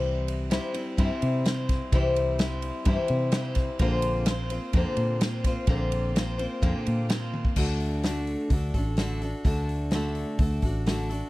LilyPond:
<<
  \new Staff \with { instrumentName = "Steel-string acoustic guitar" } { \time 4/4 \key c \lydian \tempo 4 = 128 <c e g c' e' c''>4 <g c' e' c''>8 <g c' e' c''>8 <c e g c' e' c''>4 <g c' e' c''>4 | <c e g c' e' c''>4 <g c' e' c''>4 <c e g c' e' c''>4 <g c' e' c''>4 | <bes, d bes c' f' c''>4 <bes c' f' c''>8 <bes c' f' c''>8 <bes, d bes c' f' c''>4 <bes c' f' c''>8 <bes c' f' c''>8 | <bes, d bes c' f' c''>4 <bes c' f' c''>8 <bes c' f' c''>8 <bes, d bes c' f' c''>4 <bes c' f' c''>4 |
<d a d' fis' a'>4 <d a d' fis' a'>4 <a d' fis' a'>8 <d' fis' a'>8 <d a d' fis' a'>8 <d' fis' a'>8 | <d a d' fis' a'>4 <d a d' fis' a'>4 <a d' fis' a'>8 <d' fis' a'>8 <d a d' fis' a'>8 <d' fis' a'>8 | }
  \new Staff \with { instrumentName = "Fingered electric bass" } { \clef bass \time 4/4 \key c \lydian c,4. r8 g,16 r16 c4. | c,2 g,16 r16 c4. | bes,,2 f,16 r16 bes,4. | bes,,2 f,16 r16 bes,4. |
d,2 d,8 a,,4. | d,2 d,8 a,,4. | }
  \new DrumStaff \with { instrumentName = "Drums" } \drummode { \time 4/4 r8 cymr8 <cymr sn>8 cymr8 <bd cymr>8 cymr8 <cymr sn>8 <bd cymr sn>8 | <bd cymr>8 cymr8 <cymr sn>8 cymr8 <bd cymr>8 cymr8 <cymr sn>8 <bd cymr sn>8 | <bd cymr>8 cymr8 <cymr sn>8 cymr8 <bd cymr>8 cymr8 <cymr sn>8 <bd cymr sn>8 | <bd cymr>8 cymr8 <cymr sn>8 cymr8 <bd cymr>8 cymr8 <cymr sn>8 tommh16 bd16 |
<cymc bd>8 hho8 <hho sn>8 hho8 <hho bd>8 <hho bd>8 <hho sn>8 hho8 | <hho bd>8 hho8 <hho sn>8 hho8 <hho bd>8 <hho bd>8 <hho sn>8 hho8 | }
>>